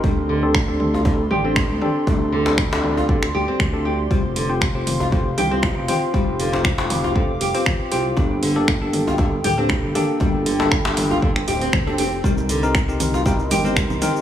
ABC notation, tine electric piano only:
X:1
M:4/4
L:1/16
Q:"Swing 16ths" 1/4=118
K:Gm
V:1 name="Tine electric piano"
[CDGA]3 [CDGA] z [CDGA]3 [CDGA] z2 [CDGA]3 [CDGA]2 | [CDGA]3 [CDGA] z [CDGA]3 [CDGA] z4 [CDGA] z2 | [CFGc]3 [CFGc] z [CFGc]3 [CFGc] z2 [CFGc]3 [CFGc]2 | [CFGc]3 [CFGc] z [CFGc]3 [CFGc] z2 [CFGc]3 [CFGc]2 |
[B,DGA]3 [B,DGA] z [B,DGA]3 [B,DGA] z2 [B,DGA]3 [B,DGA]2 | [B,DGA]3 [B,DGA] z [B,DGA]3 [B,DGA] z4 [B,DGA] z2 | [CEGB]3 [CEGB] z [CEGB]3 [CEGB] z2 [CEGB]3 [CEGB]2 |]